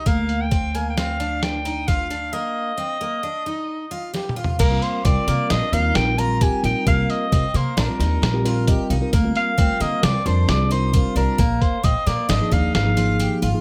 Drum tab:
CC |------------------------------|------------------------------|x-----------------------------|------------------------------|
HH |x--x--x--x--x--x--x--x--x--x--|------------------------------|x--x--x--x--x--x--x--x--x--x--|x--x--x--x--x--x--x--x--x--x--|
SD |------------o-----o-----o-----|------------------------o-----|------------o-----o-----------|------------o--o--o--o--------|
T2 |------------------------------|--------------------------o---|------------------------------|------------------------------|
FT |------------------------------|----------------------------o-|------------------------------|------------------------------|
BD |o-----o-----------------o-----|------------------------------|o-----o-----------------o-----|o-----o-----------------o-----|

CC |------------------------------|------------------------------|
HH |x--x--x--x--x--x--x--x--x--x--|x--x--x--x--x--x--x--x--x--x--|
SD |------------o-----o-----------|---------o--o-----o--o--------|
T2 |------------------------------|------------------------------|
FT |------------------------------|------------------------------|
BD |o-----o-----------------o-----|o--o--o--------o--------------|